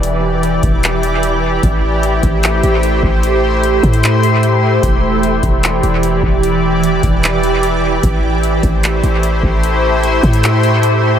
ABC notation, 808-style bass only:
X:1
M:4/4
L:1/8
Q:1/4=150
K:Ador
V:1 name="808-style bass" clef=bass
E,,,3 E,,,4- E,,, | A,,,3 A,,,2 A,,,2 A,,,- | A,,,3 A,,4- A,, | E,,,3 E,,,2 E,,,2 E,,,- |
E,,,3 E,,,4- E,,, | A,,,3 A,,,2 A,,,2 A,,,- | A,,,3 A,,4- A,, |]